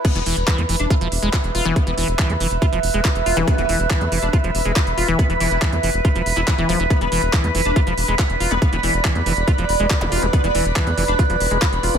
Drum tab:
CC |x---------------|----------------|----------------|----------------|
HH |xxoxxxoxxxoxxxox|xxoxxxoxxxoxxxo-|xxoxxxoxxxoxxxo-|xxoxxxoxxxoxxxox|
CP |----x-------x---|----x-------x---|----x-------x---|----x------xx---|
BD |o---o---o---o---|o---o---o---o---|o---o---o---o---|o---o---o---o---|

CC |----------------|----------------|----------------|
HH |xxoxxxoxxxoxxxox|xxoxxxoxxxoxxxox|xxoxxxoxxxoxxxox|
CP |----x-------x---|----x-------x---|----x-------x---|
BD |o---o---o---o---|o---o---o---o---|o---o---o---o---|